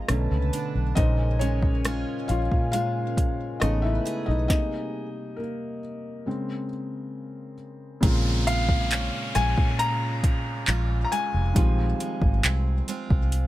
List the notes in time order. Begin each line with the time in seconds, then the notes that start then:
Already playing: F3 G#3 C4 F4, downlifter
0.08 B1 B2 D3 A3 C#4 B4 A5, cross-stick, closed hi-hat
0.31 C#2
0.53 D4, closed hi-hat
0.75 B1
0.95 A#1 A#2 C#3 G#3 C#4 D#4 A#4 C5 D#5 G#5, kick, closed hi-hat
1.39 G#3 C#4 C#5, closed hi-hat
1.63 kick
1.85 G#3 C#4 F4, cross-stick, closed hi-hat
2.28 A#1 F4 F5, closed hi-hat
2.52 A#2, kick
2.72 G#3 F4 F5, closed hi-hat
3.17 kick, closed hi-hat
3.60 A1 C#3 G#3 A3 B3 D#4 B4 D#5, cross-stick, closed hi-hat
3.82 E4 E5
4.05 G#4, closed hi-hat
4.26 B1 D#4 D#5
4.48 C3 G3 A#3 D#4 D#5, kick, snare
5.36 A#3 A#4
6.26 C#3 G#3 C4
8.01 A#1 A#2 C#3 G#3 A#3 C4, kick, closed hi-hat, downlifter
8.05 F4
8.47 G#3 F5, closed hi-hat
8.69 kick
8.91 C#4, clap, closed hi-hat
9.35 A#1 G#3 C#4 F4 G#5, cross-stick, closed hi-hat
9.58 A#2, kick
9.79 A#5, closed hi-hat
10.23 kick, closed hi-hat
10.67 A#1 G#3 C#4 F4, clap, closed hi-hat
11.05 A#5
11.12 G#3 G#5, closed hi-hat
11.34 F1
11.54 A#1 D#3 F3 G3 G#3 C4, kick, closed hi-hat
11.58 F4
12.00 G#3, closed hi-hat
12.22 G#1, kick
12.44 C2 C4, clap, closed hi-hat
12.88 G#3 C4 F4, closed hi-hat
13.10 C2, kick
13.32 closed hi-hat